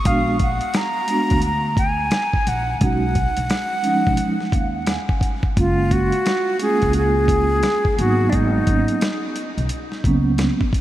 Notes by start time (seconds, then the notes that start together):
0.04 A#1 G#3 B3 D4 F#4 F5, kick, closed hi-hat
0.39 F#5, kick, closed hi-hat
0.61 closed hi-hat
0.74 A#5, snare, closed hi-hat
1.07 G#3 B3 D4 F#4, closed hi-hat
1.30 D2, kick, closed hi-hat
1.42 A#5, closed hi-hat
1.77 G#5, kick, closed hi-hat
2.11 snare, closed hi-hat
2.33 kick
2.47 A#1 F#5, closed hi-hat
2.80 B1 G#3 C#4 D#4 F#4 F#5, kick, closed hi-hat
3.15 kick, closed hi-hat
3.37 B1, closed hi-hat
3.50 snare, closed hi-hat
3.82 F3 G#3 C#4 D#4, closed hi-hat
4.07 B1, kick
4.17 closed hi-hat
4.40 snare
4.52 D#2 F5, kick, closed hi-hat
4.75 F#5
4.87 G#5, snare, closed hi-hat
5.09 kick
5.21 kick, closed hi-hat
5.43 kick
5.56 F#1 G#3 A#3 C#4 F4, kick, closed hi-hat
5.91 F#4, kick, closed hi-hat
6.12 closed hi-hat
6.26 snare, closed hi-hat
6.59 G#3 A3 C#4 F4 G#4, closed hi-hat
6.67 A#3
6.82 C#2, kick, closed hi-hat
6.93 G#4, closed hi-hat
7.28 kick, closed hi-hat
7.63 snare, closed hi-hat
7.85 kick
7.96 G#1 F#3 A#3 B3 D#4 F#4, closed hi-hat
8.30 G#1 D4, kick, closed hi-hat
8.35 D#4
8.66 G#1 F#3 A#3 B3 C#4, kick, closed hi-hat
8.88 closed hi-hat
9.01 snare, closed hi-hat
9.36 closed hi-hat
9.57 B1, closed hi-hat
9.69 closed hi-hat
9.92 snare
10.04 C#2 F#3 A#3 B3 C#4, kick, closed hi-hat
10.38 snare, closed hi-hat
10.61 kick
10.73 kick, closed hi-hat